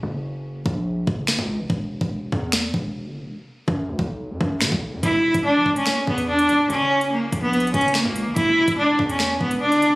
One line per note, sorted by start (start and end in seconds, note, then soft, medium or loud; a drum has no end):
0.03 0.63 F#1 loud
0.66 1.06 A#1 loud
0.66 kick medium
1.07 1.37 F#1 loud
1.07 kick medium
1.27 finger snap medium
1.27 snare loud
1.39 1.61 C#2 loud
1.39 kick medium
1.59 1.69 E1 loud
1.70 2.00 E1 loud
1.70 kick loud
2.01 2.31 E1 loud
2.01 kick medium
2.32 2.72 E2 loud
2.32 kick medium
2.52 finger snap medium
2.52 snare loud
2.74 3.07 E1 loud
2.74 kick medium
3.05 3.22 G1 loud
3.21 3.36 E1 loud
3.68 3.90 F#2 loud
3.68 kick medium
3.88 3.98 C#2 loud
3.99 4.32 B1 loud
3.99 kick medium
4.30 4.40 F#2 loud
4.41 4.63 F#2 loud
4.41 kick medium
4.61 4.71 D3 loud
4.61 finger snap medium
4.61 snare loud
4.72 4.94 B1 loud
4.72 kick medium
4.93 5.03 F#2 loud
5.03 5.33 E1 loud
5.03 5.42 E4 medium
5.03 kick loud
5.03 closed hi-hat medium
5.34 5.57 E1 loud
5.34 kick medium
5.34 closed hi-hat medium
5.45 5.74 D4 medium
5.55 5.65 B1 loud
5.66 5.86 E1 loud
5.66 kick medium
5.76 6.06 C#4 medium
5.76 closed hi-hat medium
5.86 finger snap medium
5.86 snare loud
6.07 6.51 E2 loud
6.07 6.23 B3 medium
6.07 kick medium
6.18 closed hi-hat medium
6.29 6.68 D4 medium
6.39 closed hi-hat medium
6.49 6.69 D1 loud
6.49 closed hi-hat medium
6.70 7.30 F#1 loud
6.70 7.09 C#4 loud
6.70 closed hi-hat medium
7.01 closed hi-hat medium
7.12 7.41 A#3 medium
7.32 7.72 A#1 loud
7.32 kick medium
7.32 closed hi-hat medium
7.43 7.72 B3 medium
7.53 closed hi-hat soft
7.60 closed hi-hat medium
7.67 closed hi-hat medium
7.74 8.04 F#1 loud
7.74 7.90 C#4 loud
7.74 kick medium
7.74 closed hi-hat medium
7.81 closed hi-hat medium
7.88 closed hi-hat medium
7.94 8.34 A#3 medium
7.94 finger snap medium
7.94 snare loud
8.05 8.28 C#2 loud
8.05 kick medium
8.16 closed hi-hat medium
8.26 8.36 E1 loud
8.36 8.66 E1 loud
8.36 8.76 E4 loud
8.36 kick loud
8.36 closed hi-hat medium
8.68 8.98 E1 loud
8.68 kick medium
8.68 closed hi-hat medium
8.78 9.07 D4 medium
8.99 9.39 E2 loud
8.99 kick medium
9.09 9.39 C#4 medium
9.09 closed hi-hat medium
9.19 finger snap medium
9.19 snare loud
9.41 9.73 E1 loud
9.41 9.57 B3 medium
9.41 kick medium
9.51 closed hi-hat medium
9.61 9.95 D4 medium
9.72 9.89 G1 loud
9.72 closed hi-hat medium
9.82 closed hi-hat medium
9.87 9.95 E1 loud